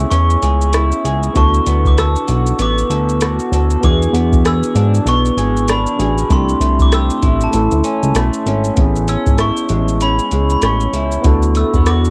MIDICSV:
0, 0, Header, 1, 6, 480
1, 0, Start_track
1, 0, Key_signature, 3, "major"
1, 0, Tempo, 617983
1, 1057, Time_signature, 4, 2, 24, 8
1, 9399, End_track
2, 0, Start_track
2, 0, Title_t, "Glockenspiel"
2, 0, Program_c, 0, 9
2, 0, Note_on_c, 0, 88, 94
2, 82, Note_on_c, 0, 85, 95
2, 100, Note_off_c, 0, 88, 0
2, 779, Note_off_c, 0, 85, 0
2, 1066, Note_on_c, 0, 85, 105
2, 1455, Note_on_c, 0, 86, 86
2, 1457, Note_off_c, 0, 85, 0
2, 1547, Note_off_c, 0, 86, 0
2, 1548, Note_on_c, 0, 88, 97
2, 1991, Note_off_c, 0, 88, 0
2, 2034, Note_on_c, 0, 86, 106
2, 2715, Note_off_c, 0, 86, 0
2, 2985, Note_on_c, 0, 86, 110
2, 3473, Note_on_c, 0, 88, 102
2, 3475, Note_off_c, 0, 86, 0
2, 3950, Note_on_c, 0, 85, 122
2, 3959, Note_off_c, 0, 88, 0
2, 4428, Note_on_c, 0, 83, 89
2, 4438, Note_off_c, 0, 85, 0
2, 4780, Note_off_c, 0, 83, 0
2, 4911, Note_on_c, 0, 84, 103
2, 5298, Note_on_c, 0, 86, 92
2, 5299, Note_off_c, 0, 84, 0
2, 5388, Note_off_c, 0, 86, 0
2, 5391, Note_on_c, 0, 88, 108
2, 5776, Note_on_c, 0, 81, 76
2, 5779, Note_off_c, 0, 88, 0
2, 6553, Note_off_c, 0, 81, 0
2, 7061, Note_on_c, 0, 88, 93
2, 7282, Note_off_c, 0, 88, 0
2, 7304, Note_on_c, 0, 85, 86
2, 7783, Note_on_c, 0, 83, 98
2, 7794, Note_off_c, 0, 85, 0
2, 8160, Note_off_c, 0, 83, 0
2, 8170, Note_on_c, 0, 83, 70
2, 8263, Note_off_c, 0, 83, 0
2, 8269, Note_on_c, 0, 85, 77
2, 8620, Note_off_c, 0, 85, 0
2, 8987, Note_on_c, 0, 88, 95
2, 9220, Note_on_c, 0, 86, 91
2, 9228, Note_off_c, 0, 88, 0
2, 9399, Note_off_c, 0, 86, 0
2, 9399, End_track
3, 0, Start_track
3, 0, Title_t, "Tine electric piano"
3, 0, Program_c, 1, 4
3, 0, Control_c, 1, 64, 127
3, 0, Note_on_c, 1, 59, 59
3, 0, Note_on_c, 1, 61, 55
3, 0, Note_on_c, 1, 64, 56
3, 0, Note_on_c, 1, 68, 66
3, 1019, Note_off_c, 1, 59, 0
3, 1025, Note_off_c, 1, 61, 0
3, 1032, Note_off_c, 1, 64, 0
3, 1037, Note_off_c, 1, 68, 0
3, 1037, Note_on_c, 1, 59, 64
3, 1048, Note_on_c, 1, 64, 56
3, 1061, Note_on_c, 1, 66, 54
3, 1066, Control_c, 1, 64, 0
3, 1071, Note_on_c, 1, 69, 66
3, 1200, Control_c, 1, 64, 127
3, 2936, Note_off_c, 1, 59, 0
3, 2941, Note_off_c, 1, 64, 0
3, 2948, Note_off_c, 1, 66, 0
3, 2953, Note_off_c, 1, 69, 0
3, 2956, Note_on_c, 1, 59, 64
3, 2972, Note_on_c, 1, 62, 58
3, 2981, Note_on_c, 1, 66, 59
3, 2986, Control_c, 1, 64, 0
3, 2995, Note_on_c, 1, 68, 65
3, 3125, Control_c, 1, 64, 127
3, 4615, Note_off_c, 1, 59, 0
3, 4623, Note_off_c, 1, 62, 0
3, 4627, Note_off_c, 1, 66, 0
3, 4634, Note_off_c, 1, 68, 0
3, 4653, Note_on_c, 1, 59, 45
3, 4658, Note_on_c, 1, 62, 50
3, 4665, Note_on_c, 1, 66, 50
3, 4672, Note_on_c, 1, 68, 58
3, 4889, Note_on_c, 1, 57, 64
3, 4891, Note_off_c, 1, 62, 0
3, 4895, Note_off_c, 1, 59, 0
3, 4900, Note_on_c, 1, 62, 64
3, 4901, Note_off_c, 1, 66, 0
3, 4904, Note_off_c, 1, 68, 0
3, 4906, Control_c, 1, 64, 0
3, 4912, Note_on_c, 1, 64, 57
3, 4928, Note_on_c, 1, 67, 64
3, 5034, Control_c, 1, 64, 127
3, 5823, Note_off_c, 1, 57, 0
3, 5832, Note_on_c, 1, 57, 67
3, 5839, Note_off_c, 1, 62, 0
3, 5845, Note_off_c, 1, 64, 0
3, 5848, Note_on_c, 1, 61, 63
3, 5853, Note_off_c, 1, 67, 0
3, 5859, Note_on_c, 1, 64, 59
3, 5868, Control_c, 1, 64, 0
3, 5872, Note_on_c, 1, 69, 74
3, 6021, Control_c, 1, 64, 127
3, 6784, Note_off_c, 1, 57, 0
3, 6793, Note_off_c, 1, 61, 0
3, 6795, Note_on_c, 1, 59, 66
3, 6798, Note_off_c, 1, 64, 0
3, 6805, Note_off_c, 1, 69, 0
3, 6812, Note_on_c, 1, 60, 52
3, 6822, Note_on_c, 1, 64, 64
3, 6827, Control_c, 1, 64, 0
3, 6838, Note_on_c, 1, 68, 79
3, 6859, Note_on_c, 1, 61, 66
3, 6874, Note_off_c, 1, 60, 0
3, 6955, Control_c, 1, 64, 127
3, 8694, Note_off_c, 1, 59, 0
3, 8708, Note_off_c, 1, 64, 0
3, 8715, Note_on_c, 1, 59, 70
3, 8716, Note_off_c, 1, 68, 0
3, 8726, Note_off_c, 1, 61, 0
3, 8728, Note_on_c, 1, 64, 71
3, 8745, Note_on_c, 1, 66, 58
3, 8747, Control_c, 1, 64, 0
3, 8756, Note_on_c, 1, 69, 81
3, 8899, Control_c, 1, 64, 127
3, 9399, Note_off_c, 1, 59, 0
3, 9399, Note_off_c, 1, 64, 0
3, 9399, Note_off_c, 1, 66, 0
3, 9399, Note_off_c, 1, 69, 0
3, 9399, End_track
4, 0, Start_track
4, 0, Title_t, "Clean electric guitar"
4, 0, Program_c, 2, 27
4, 0, Note_on_c, 2, 57, 92
4, 0, Note_on_c, 2, 61, 59
4, 0, Note_on_c, 2, 64, 52
4, 0, Note_on_c, 2, 68, 76
4, 81, Note_off_c, 2, 61, 0
4, 90, Note_on_c, 2, 61, 74
4, 321, Note_off_c, 2, 68, 0
4, 331, Note_on_c, 2, 68, 65
4, 566, Note_off_c, 2, 64, 0
4, 576, Note_on_c, 2, 64, 69
4, 808, Note_off_c, 2, 68, 0
4, 818, Note_on_c, 2, 68, 59
4, 1053, Note_on_c, 2, 50, 86
4, 1055, Note_off_c, 2, 68, 0
4, 1058, Note_on_c, 2, 69, 72
4, 1111, Note_off_c, 2, 61, 0
4, 1114, Note_off_c, 2, 64, 0
4, 1300, Note_on_c, 2, 59, 64
4, 1323, Note_off_c, 2, 57, 0
4, 1523, Note_off_c, 2, 69, 0
4, 1532, Note_on_c, 2, 69, 65
4, 1767, Note_on_c, 2, 66, 61
4, 2007, Note_off_c, 2, 59, 0
4, 2010, Note_on_c, 2, 59, 78
4, 2244, Note_off_c, 2, 69, 0
4, 2253, Note_on_c, 2, 69, 67
4, 2492, Note_off_c, 2, 66, 0
4, 2502, Note_on_c, 2, 66, 73
4, 2735, Note_off_c, 2, 69, 0
4, 2743, Note_on_c, 2, 69, 62
4, 2977, Note_on_c, 2, 52, 84
4, 2980, Note_off_c, 2, 69, 0
4, 2984, Note_on_c, 2, 68, 76
4, 3001, Note_off_c, 2, 50, 0
4, 3037, Note_off_c, 2, 66, 0
4, 3214, Note_off_c, 2, 59, 0
4, 3218, Note_on_c, 2, 59, 60
4, 3444, Note_off_c, 2, 68, 0
4, 3454, Note_on_c, 2, 68, 71
4, 3695, Note_on_c, 2, 62, 62
4, 3925, Note_off_c, 2, 59, 0
4, 3934, Note_on_c, 2, 59, 73
4, 4166, Note_off_c, 2, 68, 0
4, 4176, Note_on_c, 2, 68, 67
4, 4415, Note_off_c, 2, 62, 0
4, 4424, Note_on_c, 2, 62, 70
4, 4645, Note_off_c, 2, 68, 0
4, 4654, Note_on_c, 2, 68, 59
4, 4894, Note_on_c, 2, 48, 97
4, 4895, Note_off_c, 2, 68, 0
4, 4898, Note_on_c, 2, 67, 81
4, 4953, Note_off_c, 2, 59, 0
4, 4957, Note_off_c, 2, 62, 0
4, 5132, Note_on_c, 2, 57, 58
4, 5362, Note_off_c, 2, 67, 0
4, 5371, Note_on_c, 2, 67, 70
4, 5614, Note_on_c, 2, 64, 61
4, 5696, Note_off_c, 2, 52, 0
4, 5911, Note_off_c, 2, 67, 0
4, 5912, Note_off_c, 2, 48, 0
4, 6088, Note_off_c, 2, 64, 0
4, 6092, Note_on_c, 2, 61, 65
4, 6335, Note_off_c, 2, 57, 0
4, 6338, Note_on_c, 2, 57, 67
4, 6579, Note_off_c, 2, 61, 0
4, 6582, Note_on_c, 2, 61, 61
4, 7052, Note_off_c, 2, 57, 0
4, 7055, Note_off_c, 2, 61, 0
4, 7055, Note_on_c, 2, 61, 58
4, 7297, Note_on_c, 2, 64, 72
4, 7540, Note_on_c, 2, 56, 59
4, 7775, Note_off_c, 2, 61, 0
4, 7786, Note_on_c, 2, 61, 63
4, 8009, Note_off_c, 2, 56, 0
4, 8018, Note_on_c, 2, 56, 51
4, 8247, Note_off_c, 2, 61, 0
4, 8256, Note_on_c, 2, 61, 70
4, 8490, Note_off_c, 2, 64, 0
4, 8500, Note_on_c, 2, 64, 58
4, 8741, Note_on_c, 2, 50, 89
4, 8793, Note_off_c, 2, 61, 0
4, 8794, Note_off_c, 2, 56, 0
4, 8795, Note_off_c, 2, 64, 0
4, 8986, Note_on_c, 2, 57, 61
4, 9131, Note_off_c, 2, 57, 0
4, 9131, Note_on_c, 2, 59, 50
4, 9223, Note_on_c, 2, 66, 74
4, 9399, Note_off_c, 2, 50, 0
4, 9399, Note_off_c, 2, 59, 0
4, 9399, Note_off_c, 2, 66, 0
4, 9399, End_track
5, 0, Start_track
5, 0, Title_t, "Analog synth bass"
5, 0, Program_c, 3, 38
5, 89, Note_on_c, 3, 40, 103
5, 284, Note_off_c, 3, 40, 0
5, 331, Note_on_c, 3, 37, 79
5, 718, Note_off_c, 3, 37, 0
5, 812, Note_on_c, 3, 37, 88
5, 1006, Note_off_c, 3, 37, 0
5, 1054, Note_on_c, 3, 38, 116
5, 1247, Note_off_c, 3, 38, 0
5, 1295, Note_on_c, 3, 38, 86
5, 1680, Note_off_c, 3, 38, 0
5, 1774, Note_on_c, 3, 35, 94
5, 1967, Note_off_c, 3, 35, 0
5, 2013, Note_on_c, 3, 33, 96
5, 2207, Note_off_c, 3, 33, 0
5, 2251, Note_on_c, 3, 38, 84
5, 2637, Note_off_c, 3, 38, 0
5, 2733, Note_on_c, 3, 38, 94
5, 2926, Note_off_c, 3, 38, 0
5, 2976, Note_on_c, 3, 40, 106
5, 3169, Note_off_c, 3, 40, 0
5, 3209, Note_on_c, 3, 40, 102
5, 3596, Note_off_c, 3, 40, 0
5, 3691, Note_on_c, 3, 44, 103
5, 3885, Note_off_c, 3, 44, 0
5, 3928, Note_on_c, 3, 35, 102
5, 4123, Note_off_c, 3, 35, 0
5, 4172, Note_on_c, 3, 32, 80
5, 4558, Note_off_c, 3, 32, 0
5, 4653, Note_on_c, 3, 33, 89
5, 4846, Note_off_c, 3, 33, 0
5, 4895, Note_on_c, 3, 36, 107
5, 5087, Note_off_c, 3, 36, 0
5, 5130, Note_on_c, 3, 36, 93
5, 5517, Note_off_c, 3, 36, 0
5, 5614, Note_on_c, 3, 33, 97
5, 5807, Note_off_c, 3, 33, 0
5, 5853, Note_on_c, 3, 33, 116
5, 5969, Note_off_c, 3, 33, 0
5, 5998, Note_on_c, 3, 38, 98
5, 6075, Note_off_c, 3, 38, 0
5, 6237, Note_on_c, 3, 37, 93
5, 6315, Note_off_c, 3, 37, 0
5, 6331, Note_on_c, 3, 35, 109
5, 6448, Note_off_c, 3, 35, 0
5, 6572, Note_on_c, 3, 32, 102
5, 6766, Note_off_c, 3, 32, 0
5, 6812, Note_on_c, 3, 33, 119
5, 7121, Note_off_c, 3, 33, 0
5, 7196, Note_on_c, 3, 32, 91
5, 7389, Note_off_c, 3, 32, 0
5, 7535, Note_on_c, 3, 33, 109
5, 7919, Note_off_c, 3, 33, 0
5, 8013, Note_on_c, 3, 37, 74
5, 8206, Note_off_c, 3, 37, 0
5, 8252, Note_on_c, 3, 33, 100
5, 8445, Note_off_c, 3, 33, 0
5, 8490, Note_on_c, 3, 37, 88
5, 8684, Note_off_c, 3, 37, 0
5, 8734, Note_on_c, 3, 38, 109
5, 9042, Note_off_c, 3, 38, 0
5, 9116, Note_on_c, 3, 40, 89
5, 9386, Note_off_c, 3, 40, 0
5, 9399, End_track
6, 0, Start_track
6, 0, Title_t, "Drums"
6, 89, Note_on_c, 9, 42, 70
6, 89, Note_on_c, 9, 82, 66
6, 167, Note_off_c, 9, 42, 0
6, 167, Note_off_c, 9, 82, 0
6, 234, Note_on_c, 9, 82, 46
6, 312, Note_off_c, 9, 82, 0
6, 330, Note_on_c, 9, 42, 50
6, 330, Note_on_c, 9, 82, 52
6, 407, Note_off_c, 9, 42, 0
6, 407, Note_off_c, 9, 82, 0
6, 478, Note_on_c, 9, 82, 56
6, 556, Note_off_c, 9, 82, 0
6, 567, Note_on_c, 9, 42, 83
6, 567, Note_on_c, 9, 82, 91
6, 576, Note_on_c, 9, 37, 88
6, 644, Note_off_c, 9, 42, 0
6, 644, Note_off_c, 9, 82, 0
6, 654, Note_off_c, 9, 37, 0
6, 714, Note_on_c, 9, 82, 49
6, 792, Note_off_c, 9, 82, 0
6, 817, Note_on_c, 9, 42, 51
6, 817, Note_on_c, 9, 82, 51
6, 895, Note_off_c, 9, 42, 0
6, 895, Note_off_c, 9, 82, 0
6, 957, Note_on_c, 9, 82, 51
6, 1034, Note_off_c, 9, 82, 0
6, 1054, Note_on_c, 9, 36, 111
6, 1054, Note_on_c, 9, 42, 66
6, 1054, Note_on_c, 9, 82, 67
6, 1132, Note_off_c, 9, 36, 0
6, 1132, Note_off_c, 9, 42, 0
6, 1132, Note_off_c, 9, 82, 0
6, 1197, Note_on_c, 9, 82, 51
6, 1274, Note_off_c, 9, 82, 0
6, 1293, Note_on_c, 9, 42, 59
6, 1293, Note_on_c, 9, 82, 59
6, 1370, Note_off_c, 9, 42, 0
6, 1370, Note_off_c, 9, 82, 0
6, 1438, Note_on_c, 9, 36, 87
6, 1443, Note_on_c, 9, 82, 44
6, 1516, Note_off_c, 9, 36, 0
6, 1521, Note_off_c, 9, 82, 0
6, 1537, Note_on_c, 9, 42, 80
6, 1537, Note_on_c, 9, 82, 65
6, 1540, Note_on_c, 9, 37, 94
6, 1614, Note_off_c, 9, 42, 0
6, 1614, Note_off_c, 9, 82, 0
6, 1618, Note_off_c, 9, 37, 0
6, 1677, Note_on_c, 9, 82, 54
6, 1754, Note_off_c, 9, 82, 0
6, 1771, Note_on_c, 9, 42, 46
6, 1771, Note_on_c, 9, 82, 49
6, 1849, Note_off_c, 9, 42, 0
6, 1849, Note_off_c, 9, 82, 0
6, 1916, Note_on_c, 9, 82, 61
6, 1993, Note_off_c, 9, 82, 0
6, 2012, Note_on_c, 9, 42, 69
6, 2012, Note_on_c, 9, 82, 67
6, 2089, Note_off_c, 9, 42, 0
6, 2089, Note_off_c, 9, 82, 0
6, 2161, Note_on_c, 9, 82, 44
6, 2238, Note_off_c, 9, 82, 0
6, 2257, Note_on_c, 9, 42, 52
6, 2257, Note_on_c, 9, 82, 53
6, 2335, Note_off_c, 9, 42, 0
6, 2335, Note_off_c, 9, 82, 0
6, 2401, Note_on_c, 9, 82, 55
6, 2479, Note_off_c, 9, 82, 0
6, 2492, Note_on_c, 9, 42, 86
6, 2492, Note_on_c, 9, 82, 81
6, 2501, Note_on_c, 9, 37, 77
6, 2570, Note_off_c, 9, 42, 0
6, 2570, Note_off_c, 9, 82, 0
6, 2579, Note_off_c, 9, 37, 0
6, 2636, Note_on_c, 9, 82, 47
6, 2714, Note_off_c, 9, 82, 0
6, 2741, Note_on_c, 9, 42, 48
6, 2741, Note_on_c, 9, 82, 53
6, 2819, Note_off_c, 9, 42, 0
6, 2819, Note_off_c, 9, 82, 0
6, 2878, Note_on_c, 9, 82, 55
6, 2955, Note_off_c, 9, 82, 0
6, 2977, Note_on_c, 9, 36, 106
6, 2977, Note_on_c, 9, 42, 59
6, 2977, Note_on_c, 9, 82, 64
6, 3054, Note_off_c, 9, 42, 0
6, 3054, Note_off_c, 9, 82, 0
6, 3055, Note_off_c, 9, 36, 0
6, 3125, Note_on_c, 9, 82, 49
6, 3202, Note_off_c, 9, 82, 0
6, 3219, Note_on_c, 9, 42, 55
6, 3219, Note_on_c, 9, 82, 51
6, 3297, Note_off_c, 9, 42, 0
6, 3297, Note_off_c, 9, 82, 0
6, 3360, Note_on_c, 9, 36, 92
6, 3363, Note_on_c, 9, 82, 55
6, 3437, Note_off_c, 9, 36, 0
6, 3441, Note_off_c, 9, 82, 0
6, 3458, Note_on_c, 9, 42, 80
6, 3458, Note_on_c, 9, 82, 68
6, 3462, Note_on_c, 9, 37, 86
6, 3536, Note_off_c, 9, 42, 0
6, 3536, Note_off_c, 9, 82, 0
6, 3539, Note_off_c, 9, 37, 0
6, 3599, Note_on_c, 9, 82, 64
6, 3677, Note_off_c, 9, 82, 0
6, 3696, Note_on_c, 9, 42, 52
6, 3696, Note_on_c, 9, 82, 49
6, 3774, Note_off_c, 9, 42, 0
6, 3774, Note_off_c, 9, 82, 0
6, 3843, Note_on_c, 9, 82, 60
6, 3920, Note_off_c, 9, 82, 0
6, 3938, Note_on_c, 9, 42, 69
6, 3938, Note_on_c, 9, 82, 70
6, 4015, Note_off_c, 9, 42, 0
6, 4015, Note_off_c, 9, 82, 0
6, 4082, Note_on_c, 9, 82, 42
6, 4160, Note_off_c, 9, 82, 0
6, 4180, Note_on_c, 9, 42, 51
6, 4180, Note_on_c, 9, 82, 50
6, 4257, Note_off_c, 9, 42, 0
6, 4257, Note_off_c, 9, 82, 0
6, 4327, Note_on_c, 9, 82, 50
6, 4404, Note_off_c, 9, 82, 0
6, 4415, Note_on_c, 9, 42, 78
6, 4415, Note_on_c, 9, 82, 94
6, 4424, Note_on_c, 9, 37, 94
6, 4492, Note_off_c, 9, 42, 0
6, 4492, Note_off_c, 9, 82, 0
6, 4502, Note_off_c, 9, 37, 0
6, 4558, Note_on_c, 9, 82, 50
6, 4636, Note_off_c, 9, 82, 0
6, 4659, Note_on_c, 9, 42, 52
6, 4659, Note_on_c, 9, 82, 50
6, 4737, Note_off_c, 9, 42, 0
6, 4737, Note_off_c, 9, 82, 0
6, 4800, Note_on_c, 9, 82, 56
6, 4878, Note_off_c, 9, 82, 0
6, 4897, Note_on_c, 9, 36, 114
6, 4897, Note_on_c, 9, 42, 64
6, 4897, Note_on_c, 9, 82, 61
6, 4974, Note_off_c, 9, 36, 0
6, 4975, Note_off_c, 9, 42, 0
6, 4975, Note_off_c, 9, 82, 0
6, 5040, Note_on_c, 9, 82, 52
6, 5118, Note_off_c, 9, 82, 0
6, 5135, Note_on_c, 9, 42, 57
6, 5135, Note_on_c, 9, 82, 60
6, 5213, Note_off_c, 9, 42, 0
6, 5213, Note_off_c, 9, 82, 0
6, 5278, Note_on_c, 9, 36, 84
6, 5280, Note_on_c, 9, 82, 52
6, 5356, Note_off_c, 9, 36, 0
6, 5358, Note_off_c, 9, 82, 0
6, 5375, Note_on_c, 9, 42, 81
6, 5375, Note_on_c, 9, 82, 72
6, 5379, Note_on_c, 9, 37, 86
6, 5453, Note_off_c, 9, 42, 0
6, 5453, Note_off_c, 9, 82, 0
6, 5457, Note_off_c, 9, 37, 0
6, 5516, Note_on_c, 9, 82, 57
6, 5594, Note_off_c, 9, 82, 0
6, 5612, Note_on_c, 9, 42, 51
6, 5612, Note_on_c, 9, 82, 52
6, 5614, Note_on_c, 9, 36, 83
6, 5689, Note_off_c, 9, 42, 0
6, 5689, Note_off_c, 9, 82, 0
6, 5692, Note_off_c, 9, 36, 0
6, 5754, Note_on_c, 9, 82, 58
6, 5832, Note_off_c, 9, 82, 0
6, 5849, Note_on_c, 9, 42, 62
6, 5849, Note_on_c, 9, 82, 78
6, 5927, Note_off_c, 9, 42, 0
6, 5927, Note_off_c, 9, 82, 0
6, 5991, Note_on_c, 9, 82, 50
6, 6069, Note_off_c, 9, 82, 0
6, 6089, Note_on_c, 9, 42, 49
6, 6089, Note_on_c, 9, 82, 51
6, 6167, Note_off_c, 9, 42, 0
6, 6167, Note_off_c, 9, 82, 0
6, 6238, Note_on_c, 9, 82, 52
6, 6315, Note_off_c, 9, 82, 0
6, 6330, Note_on_c, 9, 42, 88
6, 6330, Note_on_c, 9, 82, 90
6, 6339, Note_on_c, 9, 37, 83
6, 6407, Note_off_c, 9, 42, 0
6, 6407, Note_off_c, 9, 82, 0
6, 6417, Note_off_c, 9, 37, 0
6, 6474, Note_on_c, 9, 82, 53
6, 6552, Note_off_c, 9, 82, 0
6, 6576, Note_on_c, 9, 42, 47
6, 6576, Note_on_c, 9, 82, 48
6, 6654, Note_off_c, 9, 42, 0
6, 6654, Note_off_c, 9, 82, 0
6, 6713, Note_on_c, 9, 82, 59
6, 6791, Note_off_c, 9, 82, 0
6, 6810, Note_on_c, 9, 42, 69
6, 6810, Note_on_c, 9, 82, 61
6, 6813, Note_on_c, 9, 36, 107
6, 6888, Note_off_c, 9, 42, 0
6, 6888, Note_off_c, 9, 82, 0
6, 6891, Note_off_c, 9, 36, 0
6, 6957, Note_on_c, 9, 82, 52
6, 7035, Note_off_c, 9, 82, 0
6, 7051, Note_on_c, 9, 42, 61
6, 7051, Note_on_c, 9, 82, 55
6, 7129, Note_off_c, 9, 42, 0
6, 7129, Note_off_c, 9, 82, 0
6, 7196, Note_on_c, 9, 36, 85
6, 7197, Note_on_c, 9, 82, 53
6, 7274, Note_off_c, 9, 36, 0
6, 7275, Note_off_c, 9, 82, 0
6, 7287, Note_on_c, 9, 42, 77
6, 7287, Note_on_c, 9, 82, 73
6, 7291, Note_on_c, 9, 37, 76
6, 7365, Note_off_c, 9, 42, 0
6, 7365, Note_off_c, 9, 82, 0
6, 7368, Note_off_c, 9, 37, 0
6, 7433, Note_on_c, 9, 82, 58
6, 7511, Note_off_c, 9, 82, 0
6, 7527, Note_on_c, 9, 42, 47
6, 7527, Note_on_c, 9, 82, 49
6, 7605, Note_off_c, 9, 42, 0
6, 7605, Note_off_c, 9, 82, 0
6, 7678, Note_on_c, 9, 82, 53
6, 7755, Note_off_c, 9, 82, 0
6, 7773, Note_on_c, 9, 42, 64
6, 7773, Note_on_c, 9, 82, 74
6, 7850, Note_off_c, 9, 42, 0
6, 7850, Note_off_c, 9, 82, 0
6, 7914, Note_on_c, 9, 82, 45
6, 7992, Note_off_c, 9, 82, 0
6, 8011, Note_on_c, 9, 42, 48
6, 8011, Note_on_c, 9, 82, 49
6, 8088, Note_off_c, 9, 42, 0
6, 8088, Note_off_c, 9, 82, 0
6, 8155, Note_on_c, 9, 82, 56
6, 8233, Note_off_c, 9, 82, 0
6, 8248, Note_on_c, 9, 42, 78
6, 8248, Note_on_c, 9, 82, 81
6, 8258, Note_on_c, 9, 37, 87
6, 8326, Note_off_c, 9, 42, 0
6, 8326, Note_off_c, 9, 82, 0
6, 8335, Note_off_c, 9, 37, 0
6, 8393, Note_on_c, 9, 82, 48
6, 8470, Note_off_c, 9, 82, 0
6, 8494, Note_on_c, 9, 42, 53
6, 8494, Note_on_c, 9, 82, 52
6, 8572, Note_off_c, 9, 42, 0
6, 8572, Note_off_c, 9, 82, 0
6, 8636, Note_on_c, 9, 82, 52
6, 8713, Note_off_c, 9, 82, 0
6, 8733, Note_on_c, 9, 42, 68
6, 8733, Note_on_c, 9, 82, 66
6, 8735, Note_on_c, 9, 36, 110
6, 8811, Note_off_c, 9, 42, 0
6, 8811, Note_off_c, 9, 82, 0
6, 8812, Note_off_c, 9, 36, 0
6, 8875, Note_on_c, 9, 82, 45
6, 8952, Note_off_c, 9, 82, 0
6, 8971, Note_on_c, 9, 42, 62
6, 8971, Note_on_c, 9, 82, 55
6, 9049, Note_off_c, 9, 42, 0
6, 9049, Note_off_c, 9, 82, 0
6, 9117, Note_on_c, 9, 36, 87
6, 9118, Note_on_c, 9, 82, 51
6, 9195, Note_off_c, 9, 36, 0
6, 9196, Note_off_c, 9, 82, 0
6, 9212, Note_on_c, 9, 42, 67
6, 9212, Note_on_c, 9, 82, 74
6, 9216, Note_on_c, 9, 37, 89
6, 9290, Note_off_c, 9, 42, 0
6, 9290, Note_off_c, 9, 82, 0
6, 9294, Note_off_c, 9, 37, 0
6, 9357, Note_on_c, 9, 82, 51
6, 9399, Note_off_c, 9, 82, 0
6, 9399, End_track
0, 0, End_of_file